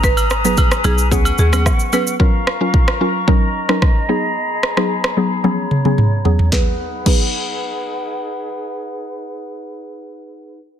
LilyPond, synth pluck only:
\new Staff \with { instrumentName = "Synth pluck" } { \time 4/4 \key gis \dorian \tempo 4 = 111 r8. <fis b dis' gis'>8. <fis b dis' gis'>8 <fis b cis' gis'>8. <fis b cis' gis'>8. <fis b cis' gis'>8 | <fis cis' eis' ais'>8. <fis cis' eis' ais'>8. <fis cis' eis' ais'>8 <fis cis' dis' ais'>8. <fis cis' dis' ais'>8. <fis b dis' gis'>8 | r8. <fis b dis' gis'>8. <fis b dis' gis'>8 <fis b cis' gis'>8. <fis b cis' gis'>8. <fis b cis' gis'>8 | <fis b dis' gis'>16 r8. <fis b dis' gis'>2.~ |
<fis b dis' gis'>1 | }